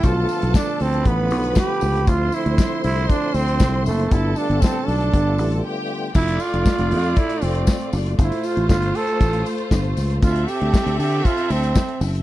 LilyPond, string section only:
\new Staff \with { instrumentName = "String section" } { \time 4/4 \key d \dorian \tempo 4 = 118 <a' a''>2 <b' b''>2 | <c'' c'''>1 | <a' a''>2. <g' g''>4 | <a f' d''>1 |
<a f' c''>1 | <c' a' e''>1 | }